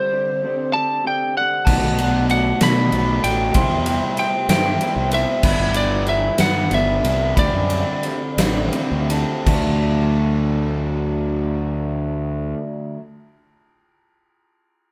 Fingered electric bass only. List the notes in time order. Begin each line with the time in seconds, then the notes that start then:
1.67 B1
1.83 B1
2.61 B2
2.92 B1
3.24 A1
3.55 C2
3.71 E2
4.49 G2
4.96 C2
5.43 G1
5.58 G1
6.39 G2
6.71 G1
7.03 C2
7.37 D2
7.53 F#2
8.38 A1
8.92 D2
9.46 D2